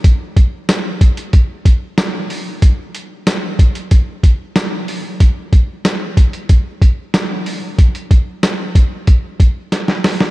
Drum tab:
HH |x-x-x-xxx-x-x-o-|x-x-x-xxx-x-x-o-|x-x-x-xxx-x-x-o-|xxx-x-x-x-x-x-o-|
TB |----x-------x---|----x-------x---|----x-------x---|----x-----------|
SD |----o-------o---|----o-------o---|----o-------o---|----o-------oooo|
BD |o-o---o-o-o-----|o-----o-o-o-----|o-o---o-o-o-----|o-o---o-o-o-----|